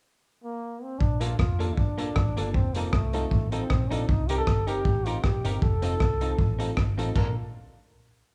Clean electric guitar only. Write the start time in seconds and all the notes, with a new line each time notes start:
1.21 A#3 D4 A4
1.59 A#3 D4 A4
1.98 A#3 D4 A4
2.37 A#3 D4 A4
2.76 C4 D#4 A4
2.94 muted clean electric guitar stroke
3.14 C4 D#4 A4
3.52 C4 D#4 A4
3.90 C4 D#4 A4
4.30 D#4 G4 A#4
4.67 D#4 G4 A#4
5.07 D#4 G4 A#4
5.45 D#4 G4 A#4
5.82 C4 D#4 A4
6.01 muted clean electric guitar stroke
6.21 C4 D#4 A4
6.59 C4 D#4 A4
6.98 C4 D#4 A4
7.16 D4 F4 A4